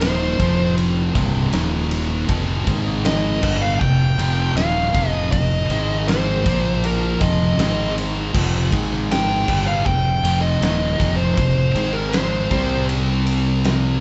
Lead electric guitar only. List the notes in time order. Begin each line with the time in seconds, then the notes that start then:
0.01 C5
3.06 D#5
3.62 F5
3.74 F5
3.79 G5
4.57 F5
5.10 D#5
5.32 D#5
6.09 C5
6.85 A#4
7.22 D#5
9.12 G5
9.67 F5
9.85 G5
10.41 D#5
11.16 C5
11.34 C5
11.93 A#4
12.09 C5